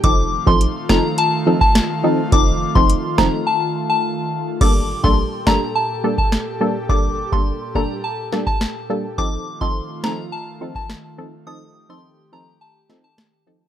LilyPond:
<<
  \new Staff \with { instrumentName = "Synth bell" } { \time 4/4 \key g \minor \tempo 4 = 105 d'''8 r16 c'''16 r8 bes''16 r16 a''16 r8 a''16 r4 | d'''8 r16 c'''16 r8 bes''16 r16 a''16 r8 a''16 r4 | d'''8 r16 c'''16 r8 bes''16 r16 a''16 r8 a''16 r4 | d'''8 r16 c'''16 r8 bes''16 r16 a''16 r8 a''16 r4 |
d'''8 r16 c'''16 r8 bes''16 r16 a''16 r8 a''16 r4 | ees'''8 r16 c'''16 r8 bes''16 r16 a''16 r8 a''16 r4 | }
  \new Staff \with { instrumentName = "Analog synth pad" } { \time 4/4 \key g \minor << { f'1~ | f'1 | g'1~ | g'1 |
f'1 | g'1 | } \\ { <ees a>1~ | <ees a>1 | <bes, a'>1~ | <bes, a'>1 |
<ees a>1~ | <ees a>1 | } >> }
  \new Staff \with { instrumentName = "Synth stab" } { \time 4/4 \key g \minor <f c' ees' a'>8. <f c' ees' a'>8. <f c' ees' a'>8 r8 <f c' ees' a'>16 r8. <f c' ees' a'>16 r16 | <f c' ees' a'>8. <f c' ees' a'>8. <f c' ees' a'>8 r2 | <g bes d' a'>8. <g bes d' a'>8. <g bes d' a'>8 r8 <g bes d' a'>16 r8. <g bes d' a'>16 r16 | <g bes d' a'>8. <g bes d' a'>8. <g bes d' a'>8 r8 <g bes d' a'>16 r8. <g bes d' a'>16 r16 |
<f c' ees' a'>8. <f c' ees' a'>8. <f c' ees' a'>8 r8 <f c' ees' a'>16 r8. <f c' ees' a'>16 r16 | <f c' ees' a'>8. <f c' ees' a'>8. <f c' ees' a'>8 r8 <f c' ees' a'>16 r8. <f c' ees' a'>16 r16 | }
  \new Staff \with { instrumentName = "808-style bass" } { \clef bass \time 4/4 \key g \minor f,,8. a,,8 r16 f,,16 r2 r16 | f,,8. f,,8 r16 f,,16 r2 r16 | g,,8. bes,,8 r16 g,,16 r2 r16 | g,,8. g,,8 r16 g,,16 r2 r16 |
r1 | r1 | }
  \new DrumStaff \with { instrumentName = "Drums" } \drummode { \time 4/4 <hh bd>8. bd16 hh8 <ss sn>8 hh8. bd16 <hh ss sn>4 | <hh bd>8. bd16 hh8 <ss sn>8 r4 r4 | <cymc bd>8. bd16 r8 <ss sn>8 r8. bd16 <ss sn>4 | bd8. bd16 r4 r8 sn16 bd16 <ss sn>4 |
bd8. bd16 r8 <ss sn>8 r8. bd16 <ss sn>4 | r4 r4 r8 sn8 <ss sn>4 | }
>>